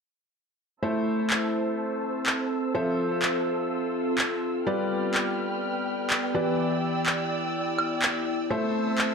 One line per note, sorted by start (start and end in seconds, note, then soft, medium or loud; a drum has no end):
0.83 2.72 A3 medium
0.83 4.67 C4 medium
0.83 2.72 E4 medium
0.83 2.72 A4 medium
0.83 2.72 C5 medium
0.83 2.73 C5 medium
0.83 2.72 E5 medium
0.83 4.63 E6 medium
0.88 2.74 E4 medium
1.17 5.34 A4 medium
1.30 clap loud
2.26 clap loud
2.75 4.64 F3 medium
2.75 4.64 F4 medium
2.75 4.65 F4 medium
2.75 4.64 A4 medium
2.75 4.65 A4 medium
2.75 4.64 C5 medium
2.75 4.64 E5 medium
3.05 6.35 F4 medium
3.22 clap loud
4.18 clap loud
4.66 6.32 G3 medium
4.66 8.50 B3 medium
4.66 6.32 F4 medium
4.66 6.32 G4 medium
4.66 6.32 B4 medium
4.66 6.33 B4 medium
4.66 6.32 D5 medium
4.66 8.47 G5 medium
4.66 6.33 F6 medium
5.14 clap loud
5.25 9.14 G4 medium
5.36 9.14 D5 medium
6.10 clap loud
6.34 8.48 E3 medium
6.34 8.48 E4 medium
6.34 8.48 G4 medium
6.34 8.48 B4 medium
6.34 8.48 D5 medium
6.34 8.48 E6 medium
6.52 9.14 E4 medium
7.06 clap loud
7.79 high woodblock medium
8.02 clap loud
8.50 9.14 A3 medium
8.50 9.14 C4 medium
8.50 9.14 E4 medium
8.50 9.14 A4 medium
8.50 9.14 C5 medium
8.50 9.14 E5 medium
8.50 9.14 A5 medium
8.50 9.14 E6 medium
8.98 clap loud
9.08 9.14 A4 medium